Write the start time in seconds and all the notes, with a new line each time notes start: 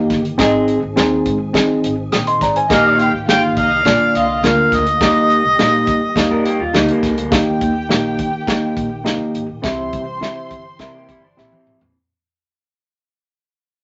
Already playing: D#3 A#3 D#4 G4 D#5
0.10 G1, kick, snare, closed hi-hat
0.25 closed hi-hat
0.38 G#1 C4 D#4 G#4 D#5, kick, snare, closed hi-hat
0.68 closed hi-hat
0.83 G#1
0.96 D#2 C4 D#4 G#4 C5, snare, closed hi-hat
1.26 G#2, kick, closed hi-hat
1.54 C4 D#4 G#4 D#5, kick, snare, closed hi-hat
1.69 muted upright bass stroke
1.84 G#1, closed hi-hat
2.12 A#1 G5 D#6, snare, closed hi-hat
2.27 D#5 C6, closed hi-hat
2.41 G#1 D5 A#5, kick, snare, closed hi-hat
2.56 C5 G#5, closed hi-hat
2.69 A#1 A#3 D#4 G4 D#5 F5, kick, snare, closed hi-hat
2.98 G4 F5 G5, closed hi-hat
3.14 G#1
3.28 G1 A#3 D#4 F4 G4 F5 G5, snare, closed hi-hat
3.57 C2 D#4 D#5 F5, kick, closed hi-hat
3.84 A#1 D3 A#3 D4 F4 D5, kick, snare, closed hi-hat
4.14 C2 F4 D#5 F5, closed hi-hat
4.43 D2 A#3 D4 F4 A#4 F5, snare, closed hi-hat
4.72 D2 D#5, kick, snare, closed hi-hat
4.86 closed hi-hat
5.01 D#2 G3 A#3 D#4 G4 D#5, kick, snare, closed hi-hat
5.30 closed hi-hat
5.44 C2
5.58 A#1 A#3 D#4 G4 D#5, snare, closed hi-hat
5.87 D#3, kick, closed hi-hat
6.16 D#2 A#3 D#4 G4 D#5, kick, snare, closed hi-hat
6.30 F2 D4 A#4
6.45 A#3 G4, closed hi-hat
6.59 D#2 F4
6.73 D2 G3 A#3 D#4 G4 D#5, snare, closed hi-hat
6.88 D3 A#3, closed hi-hat
7.03 C2, kick, snare, closed hi-hat
7.17 D2, closed hi-hat
7.31 D#2 D#3 A#3 D#4 G4 D#5 G5, kick, snare, closed hi-hat
7.61 D#2, kick, closed hi-hat
7.89 A#1 A#3 D#4 G4 D#5, snare, closed hi-hat
8.18 D#3, kick, closed hi-hat
8.47 D#3 A#3 D#4 G4 D#5, kick, snare, closed hi-hat
8.77 A#1, kick, closed hi-hat
9.04 C2 A#3 D#4 G4 D#5, snare, closed hi-hat
9.34 G#1, closed hi-hat
9.49 A#1
9.62 C2 E3 C4 E4 G4 C5 E5 C6, kick, snare, closed hi-hat
9.93 C2, kick, closed hi-hat
10.21 C3 C4 E4 G4 E5, snare, closed hi-hat
10.50 G1, kick, closed hi-hat
10.79 C3 C4 D4 E4 G4 A#4 E5, kick, snare, closed hi-hat
10.95 A#3 G4
11.09 G1 G3 E4, kick, closed hi-hat
11.24 D4
11.37 A#1 G3 C4 E4 G4 E5, snare
11.52 E3 C4, high tom
11.66 G#1, mid tom
11.81 A#1, floor tom